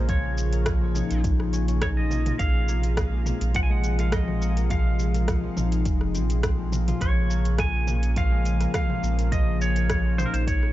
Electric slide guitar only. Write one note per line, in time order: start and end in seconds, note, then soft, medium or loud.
0.09 1.20 C#5 medium
1.83 1.88 C#5 medium
1.97 2.41 D#5 medium
2.39 3.22 F5 loud
3.56 3.62 F#5 loud
3.63 3.70 G#5 medium
3.71 3.99 F#5 loud
4.00 4.13 F5 loud
4.13 4.67 D#5 loud
4.71 5.82 F5 medium
7.02 7.61 C#5 loud
7.60 8.19 G#5 loud
8.18 8.74 F5 loud
8.75 9.28 F5 medium
9.32 9.61 D#5 loud
9.62 10.18 C#5 loud
10.18 10.26 C5 medium
10.26 10.33 A#4 medium
10.34 10.47 C5 medium
10.48 10.73 C#5 medium